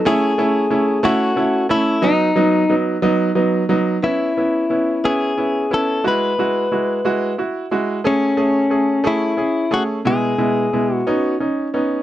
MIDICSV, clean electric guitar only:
0, 0, Header, 1, 2, 480
1, 0, Start_track
1, 0, Key_signature, 4, "major"
1, 0, Tempo, 660793
1, 35, Time_signature, 6, 3, 24, 8
1, 1955, Tempo, 670391
1, 8640, End_track
2, 0, Start_track
2, 0, Title_t, "Clean electric guitar"
2, 0, Program_c, 0, 27
2, 49, Note_on_c, 0, 68, 96
2, 759, Note_off_c, 0, 68, 0
2, 762, Note_on_c, 0, 66, 85
2, 1209, Note_off_c, 0, 66, 0
2, 1241, Note_on_c, 0, 64, 83
2, 1480, Note_on_c, 0, 63, 73
2, 1485, Note_off_c, 0, 64, 0
2, 1990, Note_off_c, 0, 63, 0
2, 2919, Note_on_c, 0, 64, 59
2, 3646, Note_on_c, 0, 68, 77
2, 3664, Note_off_c, 0, 64, 0
2, 4135, Note_off_c, 0, 68, 0
2, 4138, Note_on_c, 0, 69, 83
2, 4376, Note_off_c, 0, 69, 0
2, 4379, Note_on_c, 0, 71, 80
2, 5298, Note_off_c, 0, 71, 0
2, 5804, Note_on_c, 0, 61, 76
2, 6520, Note_off_c, 0, 61, 0
2, 6523, Note_on_c, 0, 64, 82
2, 7000, Note_on_c, 0, 66, 88
2, 7009, Note_off_c, 0, 64, 0
2, 7063, Note_off_c, 0, 66, 0
2, 7238, Note_on_c, 0, 68, 79
2, 7868, Note_off_c, 0, 68, 0
2, 7868, Note_on_c, 0, 66, 79
2, 8170, Note_off_c, 0, 66, 0
2, 8640, End_track
0, 0, End_of_file